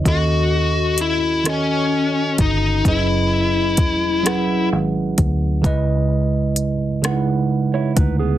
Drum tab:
HH |x-xx-x|x-xx-x|x-xx-x|
SD |---r--|---r--|---r--|
BD |o----o|o-o--o|o----o|